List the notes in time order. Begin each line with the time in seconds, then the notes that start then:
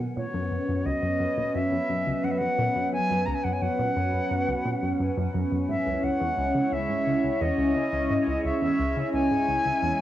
Already playing: D#3 F#3 B3 A#4
0.17 A#2 F#3 C#4 B4 C#5
0.34 F#2
0.51 F#2
0.69 F#2
0.86 C#2 D#5
1.03 F#2
1.20 F#2
1.37 A#2
1.55 F#2 E5
1.72 F#2
1.89 F#2
2.07 C#2
2.24 F#2 F#5
2.31 E5
2.38 F#2 F#5
2.58 A#2
2.76 F#2
2.93 F#2 C#4 G#5
3.10 F#2
3.26 C#2 A#5
3.34 G#5
3.44 F#2 F#5
3.53 G#5
3.62 F#2 F#5
3.79 A#2
3.96 F#2
4.13 F#2
4.31 F#2
4.48 C#2
4.65 A#2
4.83 F#2
5.00 F#2
5.17 F#2
5.34 F#2
5.52 F#2
5.68 G#2 G#3 E4 C#5 E5
5.86 C#2
6.03 C#2 F#5
6.21 E2
6.38 C#2
6.55 C#3
6.72 C#2 E5
6.89 G#2
7.07 C#2
7.24 C#2
7.41 E2 D#5
7.58 C#2
7.76 C#3
7.93 C#2
8.10 G#2
8.27 C#2
8.45 C#2 E5
8.62 E2
8.79 C#2
8.97 C#3
9.14 C#2 G#5
9.31 G#2
9.48 C#2
9.65 C#2
9.82 E2